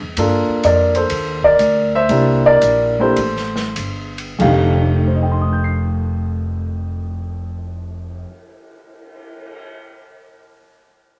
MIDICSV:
0, 0, Header, 1, 6, 480
1, 0, Start_track
1, 0, Tempo, 467290
1, 179, Time_signature, 4, 2, 24, 8
1, 1140, Tempo, 493827
1, 2100, Tempo, 539568
1, 3060, Tempo, 589971
1, 3540, Tempo, 657895
1, 8960, End_track
2, 0, Start_track
2, 0, Title_t, "Grand piano"
2, 0, Program_c, 0, 0
2, 181, Note_on_c, 0, 58, 56
2, 190, Note_on_c, 0, 62, 57
2, 193, Note_on_c, 0, 65, 60
2, 196, Note_on_c, 0, 69, 67
2, 665, Note_on_c, 0, 74, 81
2, 681, Note_on_c, 0, 70, 62
2, 964, Note_off_c, 0, 74, 0
2, 972, Note_off_c, 0, 70, 0
2, 984, Note_on_c, 0, 72, 72
2, 987, Note_off_c, 0, 69, 0
2, 1002, Note_on_c, 0, 69, 60
2, 1435, Note_off_c, 0, 69, 0
2, 1465, Note_on_c, 0, 74, 96
2, 1472, Note_off_c, 0, 72, 0
2, 1472, Note_on_c, 0, 70, 70
2, 1520, Note_off_c, 0, 58, 0
2, 1524, Note_off_c, 0, 62, 0
2, 1526, Note_off_c, 0, 65, 0
2, 1910, Note_off_c, 0, 74, 0
2, 1914, Note_off_c, 0, 70, 0
2, 1961, Note_on_c, 0, 76, 104
2, 1964, Note_on_c, 0, 72, 76
2, 2094, Note_on_c, 0, 58, 59
2, 2100, Note_on_c, 0, 62, 57
2, 2107, Note_on_c, 0, 64, 53
2, 2111, Note_on_c, 0, 67, 62
2, 2393, Note_off_c, 0, 72, 0
2, 2424, Note_on_c, 0, 74, 107
2, 2431, Note_on_c, 0, 70, 72
2, 2437, Note_off_c, 0, 76, 0
2, 2827, Note_off_c, 0, 58, 0
2, 2830, Note_off_c, 0, 62, 0
2, 2834, Note_off_c, 0, 64, 0
2, 2836, Note_off_c, 0, 67, 0
2, 2873, Note_off_c, 0, 70, 0
2, 2892, Note_on_c, 0, 58, 56
2, 2901, Note_on_c, 0, 62, 55
2, 2903, Note_on_c, 0, 64, 52
2, 2907, Note_on_c, 0, 67, 65
2, 2914, Note_on_c, 0, 72, 83
2, 2916, Note_on_c, 0, 69, 54
2, 2917, Note_off_c, 0, 74, 0
2, 3041, Note_off_c, 0, 58, 0
2, 3046, Note_off_c, 0, 62, 0
2, 3047, Note_off_c, 0, 64, 0
2, 3049, Note_off_c, 0, 67, 0
2, 3826, Note_off_c, 0, 72, 0
2, 3827, Note_off_c, 0, 69, 0
2, 3992, Note_on_c, 0, 41, 64
2, 3998, Note_on_c, 0, 51, 54
2, 4004, Note_on_c, 0, 57, 56
2, 4008, Note_on_c, 0, 77, 71
2, 4013, Note_on_c, 0, 50, 56
2, 4015, Note_on_c, 0, 67, 68
2, 4493, Note_on_c, 0, 72, 42
2, 4545, Note_on_c, 0, 75, 37
2, 4606, Note_on_c, 0, 79, 35
2, 4671, Note_on_c, 0, 84, 33
2, 4743, Note_on_c, 0, 87, 33
2, 4824, Note_on_c, 0, 91, 32
2, 4908, Note_on_c, 0, 96, 31
2, 6801, Note_off_c, 0, 77, 0
2, 6814, Note_off_c, 0, 41, 0
2, 6820, Note_off_c, 0, 51, 0
2, 6826, Note_off_c, 0, 57, 0
2, 6835, Note_off_c, 0, 50, 0
2, 6837, Note_off_c, 0, 67, 0
2, 7286, Note_off_c, 0, 72, 0
2, 7337, Note_off_c, 0, 75, 0
2, 7398, Note_off_c, 0, 79, 0
2, 7463, Note_off_c, 0, 84, 0
2, 7535, Note_off_c, 0, 87, 0
2, 7617, Note_off_c, 0, 91, 0
2, 7701, Note_off_c, 0, 96, 0
2, 8960, End_track
3, 0, Start_track
3, 0, Title_t, "Upright bass"
3, 0, Program_c, 1, 32
3, 17, Note_on_c, 1, 40, 56
3, 166, Note_off_c, 1, 40, 0
3, 176, Note_on_c, 1, 43, 76
3, 476, Note_off_c, 1, 43, 0
3, 655, Note_on_c, 1, 41, 79
3, 1126, Note_off_c, 1, 41, 0
3, 1132, Note_on_c, 1, 39, 80
3, 1594, Note_off_c, 1, 39, 0
3, 1606, Note_on_c, 1, 38, 81
3, 2083, Note_off_c, 1, 38, 0
3, 2093, Note_on_c, 1, 36, 76
3, 2550, Note_off_c, 1, 36, 0
3, 2564, Note_on_c, 1, 34, 81
3, 3044, Note_off_c, 1, 34, 0
3, 3056, Note_on_c, 1, 33, 76
3, 3524, Note_off_c, 1, 33, 0
3, 3537, Note_on_c, 1, 31, 76
3, 3988, Note_off_c, 1, 31, 0
3, 4000, Note_on_c, 1, 29, 87
3, 6793, Note_off_c, 1, 29, 0
3, 8960, End_track
4, 0, Start_track
4, 0, Title_t, "Cymbal swell"
4, 4327, Note_on_c, 9, 59, 41
4, 7762, Note_off_c, 9, 59, 0
4, 8960, End_track
5, 0, Start_track
5, 0, Title_t, "Muted upright bass strokes"
5, 497, Note_on_c, 9, 29, 34
5, 599, Note_off_c, 9, 29, 0
5, 8960, End_track
6, 0, Start_track
6, 0, Title_t, "Drums"
6, 172, Note_on_c, 9, 51, 62
6, 177, Note_on_c, 9, 36, 22
6, 275, Note_off_c, 9, 51, 0
6, 280, Note_off_c, 9, 36, 0
6, 652, Note_on_c, 9, 44, 45
6, 652, Note_on_c, 9, 51, 53
6, 654, Note_on_c, 9, 36, 21
6, 754, Note_off_c, 9, 44, 0
6, 754, Note_off_c, 9, 51, 0
6, 757, Note_off_c, 9, 36, 0
6, 973, Note_on_c, 9, 51, 45
6, 1076, Note_off_c, 9, 51, 0
6, 1126, Note_on_c, 9, 51, 61
6, 1135, Note_on_c, 9, 36, 24
6, 1224, Note_off_c, 9, 51, 0
6, 1233, Note_off_c, 9, 36, 0
6, 1453, Note_on_c, 9, 36, 48
6, 1551, Note_off_c, 9, 36, 0
6, 1608, Note_on_c, 9, 44, 50
6, 1608, Note_on_c, 9, 51, 59
6, 1705, Note_off_c, 9, 44, 0
6, 1705, Note_off_c, 9, 51, 0
6, 2093, Note_on_c, 9, 51, 49
6, 2095, Note_on_c, 9, 36, 20
6, 2183, Note_off_c, 9, 51, 0
6, 2185, Note_off_c, 9, 36, 0
6, 2560, Note_on_c, 9, 44, 53
6, 2560, Note_on_c, 9, 51, 59
6, 2564, Note_on_c, 9, 36, 16
6, 2649, Note_off_c, 9, 44, 0
6, 2649, Note_off_c, 9, 51, 0
6, 2653, Note_off_c, 9, 36, 0
6, 3048, Note_on_c, 9, 51, 58
6, 3056, Note_on_c, 9, 36, 19
6, 3131, Note_off_c, 9, 51, 0
6, 3138, Note_off_c, 9, 36, 0
6, 3212, Note_on_c, 9, 38, 25
6, 3294, Note_off_c, 9, 38, 0
6, 3369, Note_on_c, 9, 38, 39
6, 3450, Note_off_c, 9, 38, 0
6, 3534, Note_on_c, 9, 44, 51
6, 3534, Note_on_c, 9, 51, 60
6, 3537, Note_on_c, 9, 36, 15
6, 3607, Note_off_c, 9, 44, 0
6, 3607, Note_off_c, 9, 51, 0
6, 3610, Note_off_c, 9, 36, 0
6, 3842, Note_on_c, 9, 51, 42
6, 3915, Note_off_c, 9, 51, 0
6, 3999, Note_on_c, 9, 49, 60
6, 4000, Note_on_c, 9, 36, 50
6, 4072, Note_off_c, 9, 49, 0
6, 4073, Note_off_c, 9, 36, 0
6, 8960, End_track
0, 0, End_of_file